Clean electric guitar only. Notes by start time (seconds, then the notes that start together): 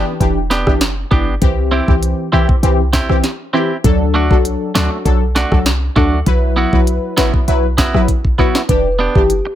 Already playing: B3
0.06 muted clean electric guitar stroke
0.50 B3 D4 G4
1.11 B3 D4 G4
1.71 C4 E4 G4
2.32 C4 E4 G4
2.49 muted clean electric guitar stroke
2.93 C4 E4 G4
3.53 C4 E4 G4
4.14 A3 D4 F#4
4.75 A3 D4 F#4
4.91 muted clean electric guitar stroke
5.35 A3 D4 F#4
5.96 A3 D4 F#4
6.56 B3 E4 F#4
7.17 B3 E4 F#4
7.33 muted clean electric guitar stroke
7.78 B3 E4 F#4
8.38 B3 E4 F#4
8.99 B3 D4 G4
9.45 muted clean electric guitar stroke